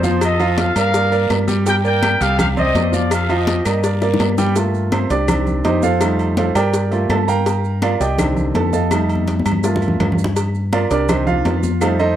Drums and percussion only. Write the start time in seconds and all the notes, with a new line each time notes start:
0.03 high conga, short guiro, maracas
0.21 cowbell, high conga, low agogo, long guiro, claves, maracas
0.40 high conga, low agogo, maracas
0.58 cowbell, high conga, low timbale, low agogo, short guiro, maracas
0.76 cowbell, high conga, low agogo, short guiro, claves, maracas
0.94 cowbell, high conga, long guiro, maracas
1.12 high conga, low agogo, maracas
1.30 cowbell, high conga, low timbale, low agogo, short guiro, claves, maracas
1.48 high conga, short guiro, maracas
1.66 cowbell, high conga, low agogo, long guiro, maracas
1.85 high conga, maracas
2.03 cowbell, high conga, low timbale, low agogo, short guiro, claves, maracas
2.21 cowbell, high conga, short guiro, maracas
2.39 cowbell, high conga, low conga, low agogo, long guiro, claves, maracas
2.57 high conga, low conga, maracas
2.75 cowbell, high conga, low timbale, low agogo, short guiro, maracas
2.93 high conga, short guiro, maracas
3.11 cowbell, low agogo, long guiro, claves, maracas
3.29 high conga, low agogo, maracas
3.47 cowbell, high conga, low timbale, low agogo, short guiro, maracas
3.65 cowbell, high conga, low agogo, short guiro, claves, maracas
3.84 cowbell, high conga, long guiro, maracas
4.02 high bongo, high conga, low agogo, maracas
4.14 low bongo
4.20 cowbell, high conga, low timbale, low agogo, short guiro, claves, maracas
4.38 low bongo, high conga, short guiro, maracas
4.56 cowbell, high conga, low agogo, maracas
4.74 high conga, maracas
4.92 cowbell, high conga, low timbale, low agogo, claves, maracas
5.10 cowbell, maracas
5.28 cowbell, high conga, low conga, low agogo, claves, maracas
5.47 high conga, low conga, maracas
5.64 cowbell, high conga, low timbale, low agogo, maracas
5.83 high conga, maracas
6.01 cowbell, high conga, low agogo, claves, maracas
6.19 high conga, low agogo, maracas
6.37 cowbell, high conga, low timbale, low agogo, maracas
6.55 cowbell, high conga, low agogo, claves, maracas
6.73 cowbell, high conga, maracas
6.91 high conga, low agogo, maracas
7.10 cowbell, high conga, low timbale, low agogo, claves, maracas
7.28 high conga, maracas
7.46 cowbell, high conga, low agogo, maracas
7.64 high conga, maracas
7.82 cowbell, high conga, low timbale, low agogo, claves, maracas
8.00 cowbell, high conga, maracas
8.18 cowbell, high conga, low conga, low agogo, claves, maracas
8.37 high conga, low conga, maracas
8.55 cowbell, high conga, low timbale, low agogo, maracas
8.73 high conga, maracas
8.91 cowbell, high conga, low agogo, claves, maracas
9.09 low agogo, maracas
9.15 high conga
9.27 cowbell, high conga, low timbale, low agogo, maracas
9.39 high conga
9.46 cowbell, low agogo, claves, maracas
9.52 low conga
9.64 cowbell, maracas
9.76 low conga
9.82 low agogo, maracas
9.88 low conga
10.00 cowbell, low conga, low timbale, low agogo, claves, maracas
10.12 low conga
10.18 maracas
10.24 low conga
10.36 cowbell, high conga, low agogo, maracas
10.55 high conga, maracas
10.72 cowbell, high conga, low timbale, low agogo, claves, maracas
10.91 cowbell, high conga, maracas
11.09 cowbell, high conga, low conga, low agogo, claves, maracas
11.27 high conga, low conga, maracas
11.45 cowbell, high conga, low timbale, low agogo, maracas
11.63 high conga, maracas
11.81 cowbell, high conga, low agogo, claves, maracas
11.99 high conga, low agogo, maracas